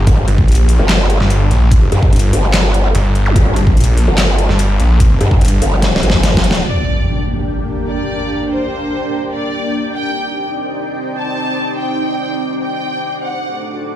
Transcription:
Already playing: analog synth pad G4 D5
0.07 wobble bass G1, analog synth pad A5, kick, closed hi-hat
0.28 detuned saw bass G1, closed hi-hat
0.38 detuned saw bass A#1, kick
0.48 closed hi-hat
0.52 closed hi-hat
0.55 closed hi-hat
0.69 open hi-hat
0.79 wobble bass G1
0.89 snare, clap, closed hi-hat
1.10 closed hi-hat
1.20 detuned saw bass G1, snare
1.30 closed hi-hat
1.51 detuned saw bass A#1, closed hi-hat
1.71 kick, closed hi-hat
1.92 wobble bass G2, closed hi-hat
2.03 kick
2.13 detuned saw bass G1, closed hi-hat
2.16 closed hi-hat
2.19 closed hi-hat
2.33 wobble bass G1, open hi-hat
2.54 snare, clap, closed hi-hat
2.74 closed hi-hat
2.95 detuned saw bass G1, closed hi-hat
3.15 closed hi-hat
3.26 zap
3.36 wobble bass G1, kick, closed hi-hat
3.56 detuned saw bass G1, closed hi-hat
3.67 detuned saw bass A#1, kick
3.77 closed hi-hat
3.80 closed hi-hat
3.84 closed hi-hat
3.97 open hi-hat
4.08 wobble bass G1
4.18 snare, clap, closed hi-hat
4.39 closed hi-hat
4.49 detuned saw bass G1, snare
4.59 closed hi-hat
4.80 detuned saw bass A#1, closed hi-hat
5.00 kick, closed hi-hat
5.21 wobble bass G2, closed hi-hat
5.31 kick
5.41 detuned saw bass G1, closed hi-hat
5.45 closed hi-hat
5.48 closed hi-hat
5.62 wobble bass G1, open hi-hat
5.82 snare, closed hi-hat
5.96 snare
6.03 wobble bass G1, closed hi-hat
6.10 kick, snare
6.23 snare, closed hi-hat
6.34 kick, snare
6.44 closed hi-hat
6.51 snare, closed hi-hat
6.64 analog synth pad A#3 D4 G4 D5 G5, ambient pad D4, violin section D5, impact
6.86 ambient pad G4
7.18 ambient pad A#4 G5
7.88 violin section D5
8.50 violin section C5
9.32 violin section D5
9.93 analog synth pad C4 D#4, ambient pad D#4, violin section G5
10.09 ambient pad C5
10.17 ambient pad D6
11.16 violin section A5
11.78 violin section G5
12.60 violin section G5
13.22 analog synth pad A3 D4 F#4 F#5, ambient pad F#4, violin section F#5
13.32 ambient pad A4

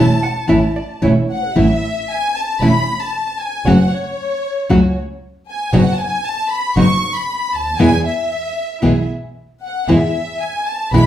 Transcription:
Already playing: double bass E1, string section A3 C#4 E4, hollow-body jazz guitar C#5, violin section A5
0.23 hollow-body jazz guitar F#5
0.48 double bass A1, nylon-string guitar E3 A3 C#4 E4, string section A3 C#4 E4, hollow-body jazz guitar E5
0.76 hollow-body jazz guitar D5
1.02 double bass E1, nylon-string guitar E3 A3 C#4 E4, string section A3 C#4 E4, hollow-body jazz guitar C#5
1.31 violin section F#5
1.56 double bass A1, nylon-string guitar E3 A3 C#4 E4, string section A3 C#4 E4, violin section E5
2.11 violin section G#5
2.37 violin section A5
2.61 double bass E1, nylon-string guitar E3 A3 C#4 E4, string section A3 C#4 E4, violin section B5
3.02 violin section A5
3.40 violin section G#5
3.66 double bass F#1, nylon-string guitar C#3 F#3 A3 C#4 F#4, string section A3 C#4 F#4, violin section F#5
3.92 violin section C#5
4.69 double bass C#2, nylon-string guitar C#3 F#3 A3 C#4 F#4, string section A3 C#4 F#4
5.49 violin section G#5
5.73 double bass F#1, nylon-string guitar B2 F#3 B3 D#4 F#4, string section B3 D#4 F#4, violin section F#5
5.94 violin section A5
6.01 violin section G#5
6.25 violin section A5
6.51 violin section B5
6.75 double bass F#1, nylon-string guitar B2 F#3 B3 D#4 F#4, string section B3 D#4 F#4, violin section C#6
7.15 violin section B5
7.53 double bass D2, violin section A5
7.78 double bass E2, nylon-string guitar B2 E3 G#3 B3 E4, string section B3 E4 G#4, violin section G#5
8.05 violin section E5
8.82 double bass B1, nylon-string guitar B2 E3 G#3 B3 E4, string section B3 E4 G#4
9.64 violin section F#5
9.87 double bass E2, nylon-string guitar B2 E3 G#3 B3 E4, string section B3 E4 G#4, violin section E5
10.40 violin section G#5
10.67 violin section A5
10.92 double bass B1, nylon-string guitar B2 E3 G#3 B3 E4, string section B3 E4 G#4, violin section B5

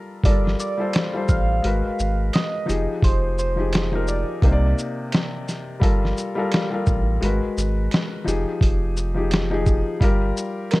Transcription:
Already playing: felt piano G3 F4 A4 A#4
0.24 sub bass G1, felt piano G3 F4 A4, soft synth lead D5, kick, closed hi-hat
0.28 felt piano A#4
0.47 snare
0.60 soft synth lead D5, shaker
0.77 felt piano G3 F4 A4 C5
0.93 finger snap, snare, closed hi-hat
1.13 felt piano G3 F4 A4 C5
1.29 sub bass A1, soft synth lead F5, kick, shaker
1.62 sub bass G#1, felt piano G#3 F#4 A#4 B4, closed hi-hat
1.85 sub bass G#1
1.99 sub bass G#1, shaker
2.33 soft synth lead D#5, finger snap, snare, closed hi-hat
2.66 sub bass F1, felt piano F3 D#4 G4 G#4, closed hi-hat, shaker
3.02 sub bass F1, soft synth lead C5, kick, closed hi-hat
3.38 soft synth lead C5, shaker
3.56 felt piano F3 D#4 G4 G#4
3.73 finger snap, snare, closed hi-hat
3.92 felt piano F3 D#4 G4 A#4
4.08 soft synth lead D5, shaker
4.42 sub bass C2, felt piano C3 A#3 D#4 C5, kick, closed hi-hat
4.52 felt piano D5
4.78 shaker
5.12 finger snap, snare, closed hi-hat
5.49 snare, closed hi-hat, shaker
5.80 sub bass G1, felt piano G3 F4 A4 A#4, kick, closed hi-hat
6.05 snare
6.17 shaker
6.35 felt piano G3 F4 A4 A#4
6.52 finger snap, snare, closed hi-hat
6.70 felt piano G3 F4 A4 A#4
6.86 sub bass A1, kick, shaker
7.21 sub bass G#1, felt piano G#3 F#4 A#4 B4, closed hi-hat
7.43 sub bass G#1
7.58 sub bass G#1, shaker
7.91 finger snap, snare, closed hi-hat
8.24 sub bass F1, felt piano F3 D#4 G4, closed hi-hat, shaker
8.28 felt piano G#4
8.61 sub bass F1, kick, closed hi-hat
8.97 shaker
9.14 felt piano F3 D#4 G4 G#4
9.31 finger snap, snare, closed hi-hat
9.50 felt piano F3 D#4 G4 G#4
9.66 kick, shaker
10.00 sub bass G1, felt piano G3 F4 G4 A#4, kick, closed hi-hat
10.37 shaker
10.71 soft synth lead A#4, finger snap, snare, closed hi-hat

